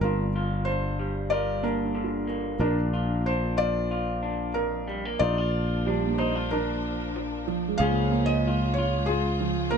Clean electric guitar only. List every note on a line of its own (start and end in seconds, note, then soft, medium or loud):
0.03 2.57 G2 medium
0.03 0.67 D4 soft
0.36 1.32 F4 medium
0.67 1.63 D4 soft
0.99 2.57 G3 medium
1.32 2.93 F4 medium
1.63 2.61 D4 medium
1.95 2.56 D3 medium
2.27 4.87 A#3 medium
2.60 4.56 A#2 medium
2.60 3.25 D4 medium
2.93 3.90 F4 medium
3.26 4.21 D4 medium
3.58 5.17 F3 medium
3.91 5.18 F4 medium
4.22 5.17 D4 medium
4.54 5.16 F2 medium
4.88 5.05 G3 medium
5.05 5.21 A#3 soft
5.21 5.80 A#2 medium
5.21 5.38 D#4 medium
5.38 6.18 F4 medium
5.87 6.45 F3 medium
5.87 7.77 D4 medium
6.19 6.36 D#4 medium
6.36 7.80 F4 medium
6.52 7.10 F2 medium
7.16 7.74 F3 medium
7.81 8.38 C#3 medium
7.81 8.46 F3 medium
7.81 9.78 C#4 medium
7.81 8.47 F4 medium
8.47 9.03 F3 medium
8.47 8.78 F4 medium
8.78 9.78 F4 medium
9.09 9.66 G#2 medium
9.72 9.78 F3 medium